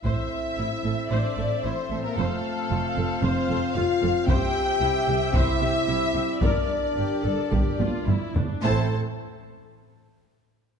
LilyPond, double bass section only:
\new Staff \with { instrumentName = "Double bass section" } { \clef bass \time 4/4 \key a \phrygian \tempo 4 = 112 a,,8 r8 a,,8 a,,8 a,,8 a,,8 a,,8 a,,8 | f,,8 r8 f,,8 f,,8 f,,8 f,,8 f,,8 f,,8 | c,8 r8 c,8 c,8 c,8 c,8 c,8 c,8 | g,,8 r8 g,,8 g,,8 g,,8 g,,8 g,,8 g,,8 |
a,,8 r2. r8 | }